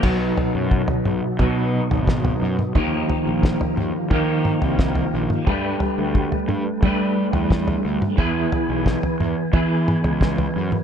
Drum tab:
CC |x---------------|----------------|----------------|----------------|
SD |------------o---|----o-------o---|------------o---|----o-------o---|
T2 |------o--------o|------o---o----o|------o--------o|------o---o----o|
FT |o-o--o--o--o-o--|o-o--o--o--o-o--|o-o--o--o--o-o--|o-o--o--o--o-o--|
BD |o---o---o---o---|o---o---o---o---|o---o---o---o---|o---o---o---o---|